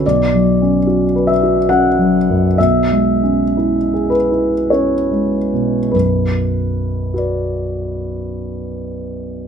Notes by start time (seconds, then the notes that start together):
0.06 B1 D5
0.35 F#3
0.62 C#4
0.87 F#4
1.16 B4
1.27 E5
1.43 F#4
1.69 C#4 F#5
1.99 F#3
2.30 F#2
2.58 B1 E5
2.91 G#3
3.23 C#4
3.57 E4
3.94 G#4
4.10 B4
4.31 E4
4.70 C#4 C#5
5.11 G#3
5.53 B2
5.91 B1 F#2 B4
7.14 F#4 B4
7.18 D5